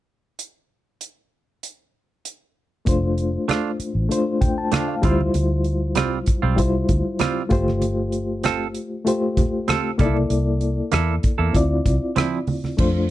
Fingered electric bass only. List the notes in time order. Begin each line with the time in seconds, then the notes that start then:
2.87 F1
3.79 muted fingered electric bass stroke
3.95 A1
5.03 D2
5.34 D2
5.97 C2
6.43 B1
6.58 C2
6.89 D2
7.51 G1
9.99 C2
10.30 C2
10.93 E2
11.39 E2
11.54 D2
11.86 C2
12.79 F2